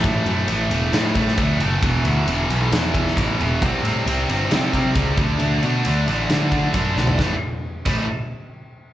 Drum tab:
CC |----------------|----------------|----------------|----------------|
RD |x-x-x-x-x-x-x-x-|x-x-x-x-x-x-x-x-|x-x-x-x-x-x-x-x-|x-x-x-x-x-x-x---|
SD |--------o--o----|--------o--o----|--------o-------|--------o-----o-|
FT |----------------|----------------|----------------|---------------o|
BD |o---------o-o---|o---------o-o---|o---------o-o-o-|----------o-o---|

CC |------x---------|
RD |----------------|
SD |o---------------|
FT |----------------|
BD |o-----o---------|